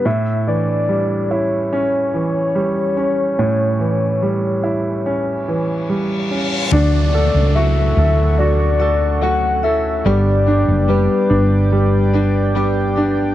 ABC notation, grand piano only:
X:1
M:4/4
L:1/8
Q:1/4=72
K:D
V:1 name="Grand piano"
A,, E, G, E C E, G, C | A,, E, G, E C E, G, C | D A F A F A F A | G, D G, D G, D G, D |]